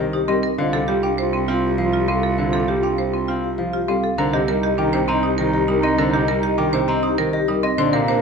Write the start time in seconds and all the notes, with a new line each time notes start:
Already playing: C2
0.00 D#3 C5 D#5
0.12 D#4 G4
0.28 G3 C4 A#4 D#5
0.43 A#4 D#5
0.58 C2 D3 F4 C5 F5
0.73 C3 A4 F5
0.88 G3 F4 G4
1.03 D4 F5 G5
1.18 F4 G4 C5
1.33 C4 G5
1.48 C4 F4 F5
1.63 G4
1.78 F3 C5 F5
1.84 F4
1.93 F4 G4
2.08 G3 C4 F5
2.15 F4
2.23 A4 F5
2.38 D3 C5 F5
2.46 F4
2.53 C3 A4 F5
2.68 G3 G4
2.78 F4
2.83 D4 F5 G5
2.98 G4 C5
3.09 F4
3.14 C4 G5
3.28 C4 F4 F5
3.41 F4 G4
3.58 F3 C5 F5
3.72 F4 G4
3.88 G3 C4 A4 F5
4.03 A4 F5
4.18 C2 D3 D#4 A#4 C5 A#5
4.33 C3 G4 D#5
4.48 G3 D#4 G4 A#4
4.63 G4 D#5
4.78 D#3 D4 D#4 G4 G5
4.93 C3 C5 G5
5.08 C4 D#5 A#5
5.13 D#4
5.23 D#4 G4
5.38 D#3 A#4 C5
5.44 D#4
5.54 G4 D#5
5.68 G3 D#4 A#4
5.76 D#4
5.83 C4 D#5
5.98 D3 A#4 C5 A#5
6.07 D#4
6.13 C3 G4 D#5
6.28 G3 G4 A#4
6.38 D#4
6.43 G4 D#5
6.58 D#3 D4 G4 G5
6.69 D#4 C5
6.73 C3 G5
6.88 C4 D#5 A#5
7.00 D#4 G4
7.18 D#3 A#4 C5
7.32 D#4 G4 D#5
7.48 G3 D#4 A#4
7.63 C4 D#5
7.78 A#2 D3 D4 C5 D5 C6
7.93 C3 A#4 F5 A#5
8.08 A#3 D4 A#4 C5